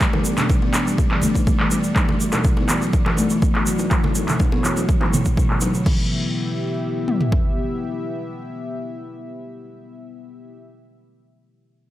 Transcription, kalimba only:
0.00 0.12 E3 medium
0.38 0.44 B2 medium
0.62 0.68 B3 medium
0.74 0.85 E3 medium
0.87 0.97 G3 medium
1.11 1.21 E3 loud
1.23 1.29 A3 medium
1.35 1.46 E3 loud
1.60 1.71 E3 medium
1.72 1.83 G3 medium
1.96 2.08 E3 medium
2.33 2.39 B2 medium
2.58 2.64 B3 medium
2.70 2.81 E3 medium
2.82 2.92 F#3 medium
3.06 3.17 E3 loud
3.18 3.25 A3 medium
3.31 3.41 E3 loud
3.55 3.66 E3 medium
3.67 3.79 F#3 medium
3.91 4.03 E3 medium
4.29 4.35 B2 medium
4.53 4.59 B3 medium
4.65 4.76 E3 medium
4.77 4.87 F#3 medium
5.02 5.12 E3 loud
5.14 5.20 B2 medium
5.62 5.69 F#3 medium
5.75 5.85 D3 medium
5.86 6.09 E3 medium

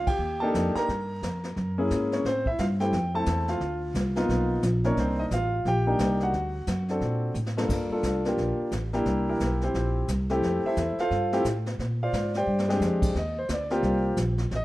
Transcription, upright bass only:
0.00 0.18 D2 medium
0.19 0.52 D#2 medium
0.54 0.74 F2 medium
0.75 muted upright bass stroke soft
0.88 1.22 G2 medium
1.22 1.55 F2 medium
1.56 1.90 F#2 medium
1.91 2.24 G#2 medium
2.25 2.58 A2 medium
2.59 2.92 G2 medium
2.92 3.26 F2 medium
3.27 3.60 E2 medium
3.60 3.94 D2 medium
3.94 4.28 C2 medium
4.29 4.62 B1 medium
4.63 4.96 A#1 medium
4.97 5.30 C2 medium
5.31 5.64 A1 medium
5.65 5.98 A#1 medium
5.99 6.32 C2 medium
6.33 6.66 D2 medium
6.67 7.00 F#2 medium
7.01 7.34 A#2 medium
7.34 7.68 A2 medium
7.69 7.89 G2 medium
7.90 muted upright bass stroke soft
8.03 8.37 C2 medium
8.37 8.57 A#1 medium
8.58 muted upright bass stroke soft
8.72 9.05 A1 medium
9.05 9.39 C2 medium
9.40 9.73 B1 medium
9.74 10.07 A#1 medium
10.08 10.41 C2 medium
10.42 10.62 F2 medium
10.64 muted upright bass stroke soft
10.77 10.96 E2 medium
10.98 muted upright bass stroke soft
11.11 11.44 G2 medium
11.45 11.78 A2 medium
11.79 12.12 A#2 medium
12.13 12.46 G#2 medium
12.46 12.79 G2 medium
12.80 13.14 F2 medium
13.15 13.48 D#2 medium
13.49 13.82 D2 medium
13.83 14.16 C2 medium
14.17 14.50 A#1 medium
14.51 14.65 A1 medium

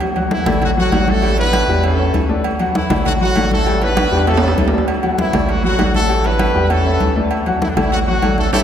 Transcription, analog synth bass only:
0.00 0.41 D2 medium
0.46 0.89 A1 medium
0.92 1.63 A1 loud
1.68 2.11 E2 loud
2.14 2.85 D2 medium
2.90 3.33 A1 loud
3.36 4.07 A1 medium
4.12 4.54 E2 loud
4.58 5.28 D2 medium
5.33 5.76 A1 medium
5.79 6.50 A1 loud
6.55 6.98 E2 loud
7.00 7.71 D2 loud
7.77 8.19 A1 loud
8.22 8.51 A1 medium
8.53 8.63 A1 loud

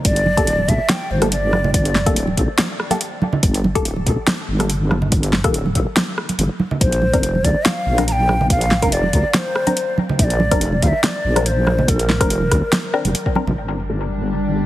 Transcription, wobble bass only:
0.05 0.36 G1 medium
0.37 0.67 D1 medium
0.68 0.79 A#1 medium
1.11 1.73 G1 medium
1.74 2.05 G1 loud
2.06 2.36 D1 loud
2.37 2.48 A#1 medium
3.43 3.74 G1 medium
3.75 4.05 D1 medium
4.06 4.17 A#1 medium
4.48 5.11 G1 medium
5.12 5.43 G1 medium
5.44 5.74 D1 medium
5.75 5.86 A#1 medium
6.38 6.49 G1 loud
6.81 7.12 A#1 medium
7.13 7.43 F1 medium
7.44 7.55 D2 medium
7.86 8.49 A#1 medium
8.50 8.81 A#1 loud
8.82 9.12 F1 medium
9.13 9.24 D2 medium
10.19 10.50 A#1 loud
10.51 10.81 F1 medium
10.83 10.93 D2 medium
11.24 11.87 A#1 medium
11.88 12.19 A#1 loud
12.20 12.50 F1 medium
12.51 12.62 D2 medium
13.05 13.14 F1 medium
13.47 13.56 A#1 medium
13.57 14.66 G1 medium

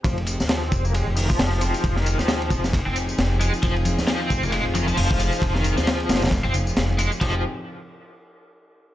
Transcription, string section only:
0.05 7.17 F3 medium
0.05 7.17 C4 medium
0.05 7.17 D#4 medium
0.05 3.59 G4 medium
0.05 7.17 G#4 medium
3.63 7.18 F4 medium
7.21 7.42 F3 medium
7.21 7.42 C4 medium
7.21 7.42 D#4 medium
7.21 7.42 G4 medium
7.21 7.42 G#4 medium

